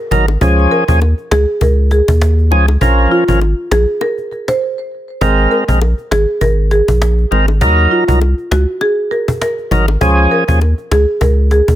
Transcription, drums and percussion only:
0.11 cajon bass loud
0.11 low bongo medium
0.28 high bongo medium
0.41 cajon bass loud
0.41 high bongo medium
0.58 cajon slap soft
0.71 cajon slap soft
0.88 cajon bass loud
1.01 high bongo medium
1.18 cajon slap soft
1.31 cajon slap loud
1.31 high bongo medium
1.31 low bongo medium
1.61 cajon bass loud
1.61 high bongo medium
1.91 cajon slap medium
1.91 cajon slap soft
2.08 cajon bass loud
2.08 high bongo medium
2.22 cajon slap loud
2.38 cajon slap soft
2.52 cajon slap soft
2.52 low bongo medium
2.68 high bongo medium
2.81 cajon bass loud
2.81 high bongo medium
2.98 cajon slap soft
3.11 cajon slap soft
3.28 cajon bass loud
3.41 cajon slap soft
3.41 high bongo medium
3.72 cajon slap loud
3.72 high bongo medium
3.72 low bongo medium
4.01 cajon slap soft
4.01 high bongo medium
4.18 cajon slap soft
4.32 cajon slap soft
4.48 cajon slap loud
4.48 high bongo medium
5.21 cajon bass loud
5.21 high bongo medium
5.38 cajon slap soft
5.51 cajon slap soft
5.68 cajon bass loud
5.82 high bongo medium
5.98 cajon slap soft
6.12 cajon slap loud
6.12 high bongo medium
6.12 low bongo medium
6.41 cajon bass loud
6.41 high bongo medium
6.71 cajon slap medium
6.71 cajon slap soft
6.88 cajon bass loud
6.88 high bongo medium
7.02 cajon slap loud
7.18 cajon slap soft
7.32 cajon slap soft
7.32 low bongo medium
7.48 high bongo medium
7.61 cajon bass loud
7.61 high bongo medium
7.78 cajon slap soft
7.91 cajon slap soft
8.08 cajon bass loud
8.21 high bongo medium
8.38 cajon slap soft
8.52 cajon slap loud
8.52 high bongo medium
8.52 low bongo medium
8.81 cajon slap soft
8.81 high bongo medium
9.11 cajon slap soft
9.28 cajon bass loud
9.28 high bongo medium
9.42 cajon slap loud
9.58 cajon slap soft
9.71 cajon bass loud
9.71 low bongo medium
9.88 high bongo medium
10.01 cajon bass loud
10.01 high bongo medium
10.18 cajon slap soft
10.31 cajon slap soft
10.48 cajon bass medium
10.61 high bongo medium
10.78 cajon slap soft
10.92 cajon slap loud
10.92 high bongo medium
10.92 low bongo medium
11.21 cajon bass loud
11.21 high bongo medium
11.51 cajon slap medium
11.51 cajon slap soft
11.68 cajon bass loud
11.68 high bongo medium

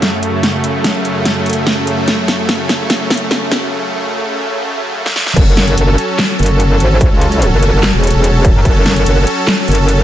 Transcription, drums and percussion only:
0.02 snare medium
0.02 closed hi-hat medium
0.23 closed hi-hat medium
0.43 snare medium
0.43 closed hi-hat medium
0.64 closed hi-hat soft
0.84 snare medium
0.84 closed hi-hat medium
1.05 closed hi-hat soft
1.25 snare medium
1.25 closed hi-hat medium
1.46 closed hi-hat soft
1.50 closed hi-hat medium
1.53 closed hi-hat medium
1.67 snare medium
1.67 closed hi-hat medium
1.87 closed hi-hat medium
2.08 snare medium
2.08 closed hi-hat medium
2.28 snare medium
2.28 closed hi-hat soft
2.49 snare medium
2.49 closed hi-hat medium
2.69 snare medium
2.69 closed hi-hat medium
2.90 snare medium
2.90 closed hi-hat medium
3.10 snare medium
3.10 closed hi-hat soft
3.14 closed hi-hat medium
3.17 closed hi-hat medium
3.31 snare medium
3.31 closed hi-hat medium
3.51 snare medium
3.51 closed hi-hat medium
5.06 snare medium
5.16 snare medium
5.26 snare medium
5.36 kick loud
5.36 closed hi-hat medium
5.36 crash loud
5.57 snare medium
5.57 closed hi-hat soft
5.68 closed hi-hat soft
5.78 closed hi-hat medium
5.98 closed hi-hat medium
6.19 snare loud
6.19 clap medium
6.19 closed hi-hat medium
6.39 closed hi-hat soft
6.43 closed hi-hat medium
6.46 closed hi-hat medium
6.60 closed hi-hat medium
6.80 closed hi-hat medium
7.01 kick loud
7.01 closed hi-hat medium
7.21 closed hi-hat soft
7.32 closed hi-hat soft
7.42 closed hi-hat medium
7.63 closed hi-hat medium
7.83 snare loud
7.83 clap medium
7.83 closed hi-hat medium
8.04 closed hi-hat soft
8.07 closed hi-hat medium
8.10 closed hi-hat medium
8.24 closed hi-hat medium
8.45 kick loud
8.45 closed hi-hat medium
8.65 kick loud
8.65 closed hi-hat medium
8.86 snare medium
8.86 closed hi-hat medium
8.96 closed hi-hat soft
9.06 closed hi-hat medium
9.27 closed hi-hat soft
9.47 snare loud
9.47 clap medium
9.47 closed hi-hat medium
9.68 closed hi-hat soft
9.72 closed hi-hat medium
9.75 closed hi-hat medium
9.89 closed hi-hat medium

